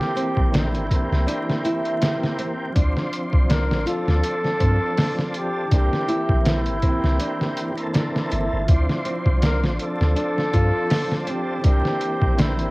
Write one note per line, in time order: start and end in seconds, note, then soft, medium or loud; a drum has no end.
0.00 0.84 E3 medium
0.00 0.86 A#3 medium
0.00 0.87 C4 medium
0.00 0.54 G4 loud
0.00 0.89 G4 medium
0.00 snare soft
0.16 0.50 C4 loud
0.16 closed hi-hat medium
0.37 0.76 A#1 loud
0.37 kick medium
0.53 1.24 D4 medium
0.53 2.36 E4 medium
0.53 snare loud
0.53 closed hi-hat medium
0.75 0.89 G1 medium
0.75 closed hi-hat soft
0.87 2.70 E3 medium
0.87 2.71 A#3 medium
0.87 kick medium
0.91 2.73 C4 medium
0.91 closed hi-hat medium
0.96 2.74 G4 loud
1.12 1.26 C2 medium
1.12 snare soft
1.27 1.62 D4 loud
1.27 closed hi-hat medium
1.49 snare soft
1.64 2.00 E4 loud
1.64 closed hi-hat medium
1.85 closed hi-hat soft
2.02 snare loud
2.02 closed hi-hat medium
2.23 snare medium
2.38 2.72 C4 loud
2.38 closed hi-hat medium
2.72 3.81 F3 medium
2.72 3.82 C4 medium
2.72 3.46 D4 medium
2.72 kick loud
2.72 closed hi-hat medium
2.76 2.93 D2 loud
2.76 3.84 D4 medium
2.82 3.86 C5 medium
2.97 snare soft
3.13 closed hi-hat medium
3.33 3.72 C2 loud
3.33 kick medium
3.49 3.85 D4 loud
3.49 3.85 A#4 loud
3.49 snare loud
3.49 closed hi-hat medium
3.71 3.85 A1 medium
3.71 snare medium
3.83 5.66 F3 medium
3.83 5.67 C4 medium
3.83 4.22 F4 loud
3.87 5.69 D4 medium
3.87 5.31 A4 loud
3.87 closed hi-hat medium
3.92 5.70 A4 medium
4.08 4.22 D2 loud
4.08 snare medium
4.24 closed hi-hat loud
4.45 snare soft
4.60 4.79 G2 medium
4.60 4.94 C4 loud
4.60 kick medium
4.60 closed hi-hat medium
4.97 5.68 D4 medium
4.97 snare loud
4.97 open hi-hat medium
5.19 snare soft
5.34 5.71 G4 loud
5.34 closed hi-hat medium
5.67 6.77 E3 medium
5.67 6.78 A#3 medium
5.67 6.07 D4 medium
5.72 5.90 C2 loud
5.72 6.80 C4 medium
5.72 6.43 G4 loud
5.72 kick loud
5.72 closed hi-hat medium
5.77 6.81 G4 medium
5.93 snare soft
6.08 6.44 E4 loud
6.08 closed hi-hat medium
6.29 6.69 A#1 loud
6.29 kick medium
6.46 8.29 E4 medium
6.46 snare loud
6.46 closed hi-hat medium
6.66 6.81 G1 medium
6.66 closed hi-hat soft
6.79 7.71 E3 medium
6.79 7.73 A#3 medium
6.79 7.16 C4 medium
6.79 kick medium
6.79 closed hi-hat medium
6.85 7.74 C4 medium
6.85 7.76 G4 medium
7.04 7.18 C2 loud
7.04 snare soft
7.20 7.91 D4 medium
7.20 closed hi-hat medium
7.41 snare soft
7.57 closed hi-hat medium
7.74 8.62 E3 medium
7.74 8.64 A#3 medium
7.74 closed hi-hat soft
7.80 8.65 C4 medium
7.80 8.67 A4 loud
7.93 8.29 D4 loud
7.93 snare loud
7.93 closed hi-hat medium
8.16 snare medium
8.31 8.49 G1 medium
8.31 8.66 E4 medium
8.31 closed hi-hat medium
8.53 8.67 G1 medium
8.65 9.74 F3 medium
8.65 9.75 C4 medium
8.65 12.71 C5 medium
8.65 kick loud
8.65 closed hi-hat medium
8.69 8.86 D2 loud
8.69 9.77 D4 medium
8.74 9.78 C5 medium
8.89 snare soft
9.05 9.39 C4 medium
9.05 closed hi-hat medium
9.26 9.65 C2 loud
9.26 kick medium
9.42 10.13 D4 medium
9.42 9.61 A#4 loud
9.42 snare loud
9.42 closed hi-hat medium
9.63 9.78 A1 medium
9.63 snare medium
9.76 11.59 F3 medium
9.76 11.60 C4 medium
9.76 closed hi-hat medium
9.82 11.62 D4 medium
9.82 11.25 A4 loud
9.82 11.64 A4 medium
10.01 10.15 D2 loud
10.01 snare soft
10.16 10.51 D4 loud
10.16 closed hi-hat medium
10.38 snare soft
10.53 10.71 G2 medium
10.53 10.88 F4 medium
10.53 kick medium
10.53 closed hi-hat medium
10.90 snare loud
10.90 open hi-hat medium
11.12 snare soft
11.27 11.61 C4 loud
11.27 11.63 G4 medium
11.27 closed hi-hat medium
11.61 11.82 C2 loud
11.61 12.70 E3 medium
11.61 12.71 A#3 medium
11.61 12.35 D4 medium
11.61 kick loud
11.61 closed hi-hat medium
11.66 12.71 C4 medium
11.66 12.42 G4 loud
11.66 12.71 G4 medium
11.85 snare soft
12.01 closed hi-hat medium
12.22 12.61 A#1 medium
12.22 kick medium
12.38 12.71 D4 loud
12.38 12.71 E4 loud
12.38 snare loud
12.38 closed hi-hat medium
12.59 12.71 G1 loud
12.59 closed hi-hat soft